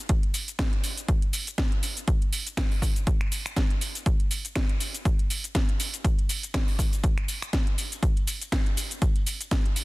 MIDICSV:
0, 0, Header, 1, 2, 480
1, 0, Start_track
1, 0, Tempo, 495868
1, 91, Time_signature, 4, 2, 24, 8
1, 9525, End_track
2, 0, Start_track
2, 0, Title_t, "Drums"
2, 89, Note_on_c, 9, 42, 91
2, 90, Note_on_c, 9, 36, 122
2, 92, Note_on_c, 9, 82, 32
2, 186, Note_off_c, 9, 42, 0
2, 187, Note_off_c, 9, 36, 0
2, 189, Note_off_c, 9, 82, 0
2, 224, Note_on_c, 9, 54, 46
2, 225, Note_on_c, 9, 42, 36
2, 321, Note_off_c, 9, 42, 0
2, 321, Note_off_c, 9, 54, 0
2, 329, Note_on_c, 9, 46, 108
2, 332, Note_on_c, 9, 82, 73
2, 426, Note_off_c, 9, 46, 0
2, 429, Note_off_c, 9, 82, 0
2, 463, Note_on_c, 9, 54, 81
2, 465, Note_on_c, 9, 42, 37
2, 468, Note_on_c, 9, 82, 43
2, 560, Note_off_c, 9, 54, 0
2, 562, Note_off_c, 9, 42, 0
2, 565, Note_off_c, 9, 82, 0
2, 570, Note_on_c, 9, 26, 84
2, 570, Note_on_c, 9, 36, 120
2, 570, Note_on_c, 9, 42, 89
2, 572, Note_on_c, 9, 38, 123
2, 573, Note_on_c, 9, 82, 33
2, 666, Note_off_c, 9, 26, 0
2, 666, Note_off_c, 9, 42, 0
2, 667, Note_off_c, 9, 36, 0
2, 669, Note_off_c, 9, 38, 0
2, 669, Note_off_c, 9, 82, 0
2, 706, Note_on_c, 9, 42, 37
2, 803, Note_off_c, 9, 42, 0
2, 810, Note_on_c, 9, 46, 106
2, 813, Note_on_c, 9, 82, 69
2, 906, Note_off_c, 9, 46, 0
2, 909, Note_off_c, 9, 82, 0
2, 943, Note_on_c, 9, 42, 38
2, 944, Note_on_c, 9, 54, 82
2, 946, Note_on_c, 9, 82, 43
2, 1040, Note_off_c, 9, 42, 0
2, 1041, Note_off_c, 9, 54, 0
2, 1043, Note_off_c, 9, 82, 0
2, 1050, Note_on_c, 9, 36, 118
2, 1050, Note_on_c, 9, 42, 91
2, 1053, Note_on_c, 9, 82, 31
2, 1147, Note_off_c, 9, 36, 0
2, 1147, Note_off_c, 9, 42, 0
2, 1150, Note_off_c, 9, 82, 0
2, 1184, Note_on_c, 9, 42, 36
2, 1192, Note_on_c, 9, 54, 41
2, 1281, Note_off_c, 9, 42, 0
2, 1289, Note_off_c, 9, 54, 0
2, 1289, Note_on_c, 9, 46, 110
2, 1292, Note_on_c, 9, 82, 73
2, 1386, Note_off_c, 9, 46, 0
2, 1389, Note_off_c, 9, 82, 0
2, 1425, Note_on_c, 9, 42, 40
2, 1426, Note_on_c, 9, 54, 80
2, 1428, Note_on_c, 9, 82, 40
2, 1522, Note_off_c, 9, 42, 0
2, 1523, Note_off_c, 9, 54, 0
2, 1525, Note_off_c, 9, 82, 0
2, 1530, Note_on_c, 9, 36, 119
2, 1530, Note_on_c, 9, 42, 81
2, 1532, Note_on_c, 9, 38, 119
2, 1533, Note_on_c, 9, 82, 28
2, 1626, Note_off_c, 9, 36, 0
2, 1626, Note_off_c, 9, 42, 0
2, 1629, Note_off_c, 9, 38, 0
2, 1629, Note_off_c, 9, 82, 0
2, 1665, Note_on_c, 9, 42, 36
2, 1762, Note_off_c, 9, 42, 0
2, 1770, Note_on_c, 9, 46, 102
2, 1773, Note_on_c, 9, 82, 73
2, 1866, Note_off_c, 9, 46, 0
2, 1869, Note_off_c, 9, 82, 0
2, 1900, Note_on_c, 9, 54, 81
2, 1905, Note_on_c, 9, 42, 38
2, 1908, Note_on_c, 9, 82, 43
2, 1997, Note_off_c, 9, 54, 0
2, 2002, Note_off_c, 9, 42, 0
2, 2005, Note_off_c, 9, 82, 0
2, 2009, Note_on_c, 9, 42, 89
2, 2010, Note_on_c, 9, 36, 122
2, 2012, Note_on_c, 9, 82, 33
2, 2106, Note_off_c, 9, 42, 0
2, 2107, Note_off_c, 9, 36, 0
2, 2109, Note_off_c, 9, 82, 0
2, 2147, Note_on_c, 9, 42, 37
2, 2147, Note_on_c, 9, 54, 43
2, 2243, Note_off_c, 9, 54, 0
2, 2244, Note_off_c, 9, 42, 0
2, 2251, Note_on_c, 9, 46, 111
2, 2255, Note_on_c, 9, 82, 77
2, 2348, Note_off_c, 9, 46, 0
2, 2351, Note_off_c, 9, 82, 0
2, 2383, Note_on_c, 9, 54, 86
2, 2387, Note_on_c, 9, 42, 36
2, 2390, Note_on_c, 9, 82, 40
2, 2480, Note_off_c, 9, 54, 0
2, 2483, Note_off_c, 9, 42, 0
2, 2487, Note_off_c, 9, 82, 0
2, 2490, Note_on_c, 9, 36, 118
2, 2493, Note_on_c, 9, 26, 91
2, 2493, Note_on_c, 9, 42, 90
2, 2495, Note_on_c, 9, 38, 120
2, 2496, Note_on_c, 9, 82, 33
2, 2587, Note_off_c, 9, 36, 0
2, 2589, Note_off_c, 9, 26, 0
2, 2589, Note_off_c, 9, 42, 0
2, 2592, Note_off_c, 9, 38, 0
2, 2592, Note_off_c, 9, 82, 0
2, 2628, Note_on_c, 9, 46, 63
2, 2724, Note_off_c, 9, 46, 0
2, 2730, Note_on_c, 9, 36, 64
2, 2734, Note_on_c, 9, 46, 99
2, 2737, Note_on_c, 9, 82, 73
2, 2827, Note_off_c, 9, 36, 0
2, 2830, Note_off_c, 9, 46, 0
2, 2833, Note_off_c, 9, 82, 0
2, 2866, Note_on_c, 9, 42, 37
2, 2866, Note_on_c, 9, 54, 92
2, 2869, Note_on_c, 9, 82, 43
2, 2963, Note_off_c, 9, 42, 0
2, 2963, Note_off_c, 9, 54, 0
2, 2966, Note_off_c, 9, 82, 0
2, 2971, Note_on_c, 9, 36, 115
2, 2971, Note_on_c, 9, 42, 88
2, 2974, Note_on_c, 9, 82, 32
2, 3068, Note_off_c, 9, 36, 0
2, 3068, Note_off_c, 9, 42, 0
2, 3071, Note_off_c, 9, 82, 0
2, 3106, Note_on_c, 9, 26, 82
2, 3106, Note_on_c, 9, 42, 35
2, 3203, Note_off_c, 9, 26, 0
2, 3203, Note_off_c, 9, 42, 0
2, 3212, Note_on_c, 9, 46, 103
2, 3215, Note_on_c, 9, 82, 74
2, 3309, Note_off_c, 9, 46, 0
2, 3312, Note_off_c, 9, 82, 0
2, 3347, Note_on_c, 9, 26, 83
2, 3347, Note_on_c, 9, 42, 37
2, 3347, Note_on_c, 9, 54, 70
2, 3350, Note_on_c, 9, 82, 44
2, 3444, Note_off_c, 9, 26, 0
2, 3444, Note_off_c, 9, 42, 0
2, 3444, Note_off_c, 9, 54, 0
2, 3447, Note_off_c, 9, 82, 0
2, 3451, Note_on_c, 9, 36, 121
2, 3453, Note_on_c, 9, 42, 82
2, 3455, Note_on_c, 9, 38, 109
2, 3456, Note_on_c, 9, 82, 30
2, 3548, Note_off_c, 9, 36, 0
2, 3549, Note_off_c, 9, 42, 0
2, 3552, Note_off_c, 9, 38, 0
2, 3552, Note_off_c, 9, 82, 0
2, 3583, Note_on_c, 9, 54, 46
2, 3587, Note_on_c, 9, 42, 35
2, 3680, Note_off_c, 9, 54, 0
2, 3683, Note_off_c, 9, 42, 0
2, 3691, Note_on_c, 9, 46, 100
2, 3694, Note_on_c, 9, 82, 74
2, 3788, Note_off_c, 9, 46, 0
2, 3791, Note_off_c, 9, 82, 0
2, 3826, Note_on_c, 9, 42, 37
2, 3827, Note_on_c, 9, 54, 81
2, 3829, Note_on_c, 9, 82, 43
2, 3923, Note_off_c, 9, 42, 0
2, 3924, Note_off_c, 9, 54, 0
2, 3926, Note_off_c, 9, 82, 0
2, 3931, Note_on_c, 9, 36, 122
2, 3931, Note_on_c, 9, 42, 93
2, 3934, Note_on_c, 9, 82, 34
2, 4028, Note_off_c, 9, 36, 0
2, 4028, Note_off_c, 9, 42, 0
2, 4031, Note_off_c, 9, 82, 0
2, 4064, Note_on_c, 9, 42, 37
2, 4064, Note_on_c, 9, 54, 40
2, 4160, Note_off_c, 9, 54, 0
2, 4161, Note_off_c, 9, 42, 0
2, 4170, Note_on_c, 9, 46, 107
2, 4173, Note_on_c, 9, 82, 75
2, 4267, Note_off_c, 9, 46, 0
2, 4270, Note_off_c, 9, 82, 0
2, 4305, Note_on_c, 9, 42, 36
2, 4308, Note_on_c, 9, 54, 85
2, 4308, Note_on_c, 9, 82, 44
2, 4402, Note_off_c, 9, 42, 0
2, 4405, Note_off_c, 9, 54, 0
2, 4405, Note_off_c, 9, 82, 0
2, 4409, Note_on_c, 9, 26, 91
2, 4409, Note_on_c, 9, 42, 91
2, 4412, Note_on_c, 9, 36, 111
2, 4412, Note_on_c, 9, 38, 118
2, 4412, Note_on_c, 9, 82, 33
2, 4506, Note_off_c, 9, 26, 0
2, 4506, Note_off_c, 9, 42, 0
2, 4508, Note_off_c, 9, 36, 0
2, 4509, Note_off_c, 9, 38, 0
2, 4509, Note_off_c, 9, 82, 0
2, 4544, Note_on_c, 9, 42, 37
2, 4550, Note_on_c, 9, 54, 37
2, 4641, Note_off_c, 9, 42, 0
2, 4647, Note_off_c, 9, 54, 0
2, 4650, Note_on_c, 9, 46, 98
2, 4653, Note_on_c, 9, 82, 73
2, 4747, Note_off_c, 9, 46, 0
2, 4750, Note_off_c, 9, 82, 0
2, 4786, Note_on_c, 9, 42, 37
2, 4789, Note_on_c, 9, 54, 87
2, 4789, Note_on_c, 9, 82, 44
2, 4883, Note_off_c, 9, 42, 0
2, 4886, Note_off_c, 9, 54, 0
2, 4886, Note_off_c, 9, 82, 0
2, 4892, Note_on_c, 9, 36, 114
2, 4894, Note_on_c, 9, 42, 83
2, 4897, Note_on_c, 9, 82, 33
2, 4988, Note_off_c, 9, 36, 0
2, 4990, Note_off_c, 9, 42, 0
2, 4993, Note_off_c, 9, 82, 0
2, 5022, Note_on_c, 9, 54, 41
2, 5027, Note_on_c, 9, 42, 36
2, 5119, Note_off_c, 9, 54, 0
2, 5123, Note_off_c, 9, 42, 0
2, 5133, Note_on_c, 9, 46, 105
2, 5136, Note_on_c, 9, 82, 78
2, 5230, Note_off_c, 9, 46, 0
2, 5233, Note_off_c, 9, 82, 0
2, 5256, Note_on_c, 9, 54, 76
2, 5267, Note_on_c, 9, 42, 36
2, 5270, Note_on_c, 9, 82, 43
2, 5353, Note_off_c, 9, 54, 0
2, 5364, Note_off_c, 9, 42, 0
2, 5367, Note_off_c, 9, 82, 0
2, 5372, Note_on_c, 9, 36, 109
2, 5372, Note_on_c, 9, 42, 84
2, 5375, Note_on_c, 9, 38, 104
2, 5375, Note_on_c, 9, 82, 32
2, 5468, Note_off_c, 9, 36, 0
2, 5469, Note_off_c, 9, 42, 0
2, 5472, Note_off_c, 9, 38, 0
2, 5472, Note_off_c, 9, 82, 0
2, 5507, Note_on_c, 9, 42, 36
2, 5510, Note_on_c, 9, 54, 41
2, 5604, Note_off_c, 9, 42, 0
2, 5606, Note_off_c, 9, 54, 0
2, 5612, Note_on_c, 9, 46, 108
2, 5615, Note_on_c, 9, 82, 75
2, 5709, Note_off_c, 9, 46, 0
2, 5712, Note_off_c, 9, 82, 0
2, 5741, Note_on_c, 9, 54, 86
2, 5747, Note_on_c, 9, 42, 37
2, 5750, Note_on_c, 9, 82, 46
2, 5837, Note_off_c, 9, 54, 0
2, 5844, Note_off_c, 9, 42, 0
2, 5847, Note_off_c, 9, 82, 0
2, 5852, Note_on_c, 9, 36, 112
2, 5854, Note_on_c, 9, 42, 97
2, 5857, Note_on_c, 9, 82, 35
2, 5948, Note_off_c, 9, 36, 0
2, 5951, Note_off_c, 9, 42, 0
2, 5954, Note_off_c, 9, 82, 0
2, 5980, Note_on_c, 9, 54, 40
2, 5988, Note_on_c, 9, 42, 39
2, 6077, Note_off_c, 9, 54, 0
2, 6085, Note_off_c, 9, 42, 0
2, 6092, Note_on_c, 9, 46, 105
2, 6095, Note_on_c, 9, 82, 83
2, 6189, Note_off_c, 9, 46, 0
2, 6192, Note_off_c, 9, 82, 0
2, 6224, Note_on_c, 9, 54, 87
2, 6227, Note_on_c, 9, 42, 39
2, 6230, Note_on_c, 9, 82, 45
2, 6321, Note_off_c, 9, 54, 0
2, 6324, Note_off_c, 9, 42, 0
2, 6327, Note_off_c, 9, 82, 0
2, 6331, Note_on_c, 9, 36, 113
2, 6333, Note_on_c, 9, 26, 89
2, 6333, Note_on_c, 9, 42, 91
2, 6335, Note_on_c, 9, 38, 113
2, 6336, Note_on_c, 9, 82, 36
2, 6428, Note_off_c, 9, 36, 0
2, 6430, Note_off_c, 9, 26, 0
2, 6430, Note_off_c, 9, 42, 0
2, 6432, Note_off_c, 9, 38, 0
2, 6433, Note_off_c, 9, 82, 0
2, 6467, Note_on_c, 9, 46, 58
2, 6470, Note_on_c, 9, 54, 36
2, 6563, Note_off_c, 9, 46, 0
2, 6566, Note_off_c, 9, 54, 0
2, 6571, Note_on_c, 9, 36, 59
2, 6572, Note_on_c, 9, 46, 95
2, 6575, Note_on_c, 9, 82, 80
2, 6668, Note_off_c, 9, 36, 0
2, 6669, Note_off_c, 9, 46, 0
2, 6672, Note_off_c, 9, 82, 0
2, 6706, Note_on_c, 9, 54, 80
2, 6707, Note_on_c, 9, 42, 40
2, 6710, Note_on_c, 9, 82, 47
2, 6803, Note_off_c, 9, 54, 0
2, 6804, Note_off_c, 9, 42, 0
2, 6807, Note_off_c, 9, 82, 0
2, 6811, Note_on_c, 9, 36, 112
2, 6812, Note_on_c, 9, 42, 89
2, 6815, Note_on_c, 9, 82, 35
2, 6908, Note_off_c, 9, 36, 0
2, 6909, Note_off_c, 9, 42, 0
2, 6912, Note_off_c, 9, 82, 0
2, 6946, Note_on_c, 9, 26, 78
2, 6946, Note_on_c, 9, 42, 38
2, 6950, Note_on_c, 9, 54, 39
2, 7043, Note_off_c, 9, 26, 0
2, 7043, Note_off_c, 9, 42, 0
2, 7047, Note_off_c, 9, 54, 0
2, 7051, Note_on_c, 9, 46, 99
2, 7054, Note_on_c, 9, 82, 80
2, 7148, Note_off_c, 9, 46, 0
2, 7151, Note_off_c, 9, 82, 0
2, 7178, Note_on_c, 9, 54, 69
2, 7186, Note_on_c, 9, 26, 80
2, 7186, Note_on_c, 9, 42, 40
2, 7189, Note_on_c, 9, 82, 45
2, 7275, Note_off_c, 9, 54, 0
2, 7283, Note_off_c, 9, 26, 0
2, 7283, Note_off_c, 9, 42, 0
2, 7286, Note_off_c, 9, 82, 0
2, 7290, Note_on_c, 9, 36, 109
2, 7290, Note_on_c, 9, 42, 86
2, 7293, Note_on_c, 9, 38, 105
2, 7293, Note_on_c, 9, 82, 32
2, 7296, Note_on_c, 9, 54, 64
2, 7387, Note_off_c, 9, 36, 0
2, 7387, Note_off_c, 9, 42, 0
2, 7389, Note_off_c, 9, 38, 0
2, 7390, Note_off_c, 9, 82, 0
2, 7393, Note_off_c, 9, 54, 0
2, 7421, Note_on_c, 9, 54, 39
2, 7425, Note_on_c, 9, 42, 37
2, 7517, Note_off_c, 9, 54, 0
2, 7522, Note_off_c, 9, 42, 0
2, 7532, Note_on_c, 9, 46, 99
2, 7535, Note_on_c, 9, 82, 81
2, 7629, Note_off_c, 9, 46, 0
2, 7632, Note_off_c, 9, 82, 0
2, 7667, Note_on_c, 9, 42, 39
2, 7670, Note_on_c, 9, 54, 73
2, 7670, Note_on_c, 9, 82, 46
2, 7764, Note_off_c, 9, 42, 0
2, 7767, Note_off_c, 9, 54, 0
2, 7767, Note_off_c, 9, 82, 0
2, 7769, Note_on_c, 9, 36, 109
2, 7772, Note_on_c, 9, 42, 100
2, 7775, Note_on_c, 9, 82, 37
2, 7866, Note_off_c, 9, 36, 0
2, 7869, Note_off_c, 9, 42, 0
2, 7872, Note_off_c, 9, 82, 0
2, 7902, Note_on_c, 9, 54, 37
2, 7907, Note_on_c, 9, 42, 39
2, 7998, Note_off_c, 9, 54, 0
2, 8004, Note_off_c, 9, 42, 0
2, 8009, Note_on_c, 9, 46, 101
2, 8012, Note_on_c, 9, 82, 80
2, 8106, Note_off_c, 9, 46, 0
2, 8109, Note_off_c, 9, 82, 0
2, 8146, Note_on_c, 9, 42, 40
2, 8147, Note_on_c, 9, 54, 79
2, 8149, Note_on_c, 9, 82, 47
2, 8243, Note_off_c, 9, 42, 0
2, 8244, Note_off_c, 9, 54, 0
2, 8246, Note_off_c, 9, 82, 0
2, 8249, Note_on_c, 9, 36, 109
2, 8251, Note_on_c, 9, 26, 86
2, 8251, Note_on_c, 9, 42, 102
2, 8254, Note_on_c, 9, 38, 119
2, 8254, Note_on_c, 9, 82, 38
2, 8346, Note_off_c, 9, 36, 0
2, 8348, Note_off_c, 9, 26, 0
2, 8348, Note_off_c, 9, 42, 0
2, 8351, Note_off_c, 9, 38, 0
2, 8351, Note_off_c, 9, 82, 0
2, 8386, Note_on_c, 9, 42, 39
2, 8388, Note_on_c, 9, 54, 39
2, 8483, Note_off_c, 9, 42, 0
2, 8485, Note_off_c, 9, 54, 0
2, 8492, Note_on_c, 9, 46, 98
2, 8495, Note_on_c, 9, 82, 81
2, 8588, Note_off_c, 9, 46, 0
2, 8591, Note_off_c, 9, 82, 0
2, 8619, Note_on_c, 9, 54, 74
2, 8625, Note_on_c, 9, 42, 38
2, 8628, Note_on_c, 9, 82, 47
2, 8716, Note_off_c, 9, 54, 0
2, 8722, Note_off_c, 9, 42, 0
2, 8725, Note_off_c, 9, 82, 0
2, 8729, Note_on_c, 9, 36, 108
2, 8730, Note_on_c, 9, 42, 93
2, 8731, Note_on_c, 9, 54, 68
2, 8733, Note_on_c, 9, 82, 36
2, 8826, Note_off_c, 9, 36, 0
2, 8827, Note_off_c, 9, 42, 0
2, 8828, Note_off_c, 9, 54, 0
2, 8830, Note_off_c, 9, 82, 0
2, 8864, Note_on_c, 9, 42, 40
2, 8865, Note_on_c, 9, 54, 41
2, 8960, Note_off_c, 9, 42, 0
2, 8962, Note_off_c, 9, 54, 0
2, 8969, Note_on_c, 9, 46, 101
2, 8972, Note_on_c, 9, 82, 82
2, 9066, Note_off_c, 9, 46, 0
2, 9069, Note_off_c, 9, 82, 0
2, 9105, Note_on_c, 9, 42, 41
2, 9108, Note_on_c, 9, 82, 47
2, 9110, Note_on_c, 9, 54, 70
2, 9202, Note_off_c, 9, 42, 0
2, 9205, Note_off_c, 9, 82, 0
2, 9207, Note_off_c, 9, 54, 0
2, 9208, Note_on_c, 9, 42, 91
2, 9209, Note_on_c, 9, 36, 111
2, 9211, Note_on_c, 9, 38, 106
2, 9211, Note_on_c, 9, 82, 34
2, 9215, Note_on_c, 9, 54, 67
2, 9305, Note_off_c, 9, 42, 0
2, 9306, Note_off_c, 9, 36, 0
2, 9308, Note_off_c, 9, 38, 0
2, 9308, Note_off_c, 9, 82, 0
2, 9311, Note_off_c, 9, 54, 0
2, 9346, Note_on_c, 9, 42, 38
2, 9347, Note_on_c, 9, 54, 35
2, 9443, Note_off_c, 9, 42, 0
2, 9444, Note_off_c, 9, 54, 0
2, 9448, Note_on_c, 9, 46, 100
2, 9451, Note_on_c, 9, 82, 83
2, 9525, Note_off_c, 9, 46, 0
2, 9525, Note_off_c, 9, 82, 0
2, 9525, End_track
0, 0, End_of_file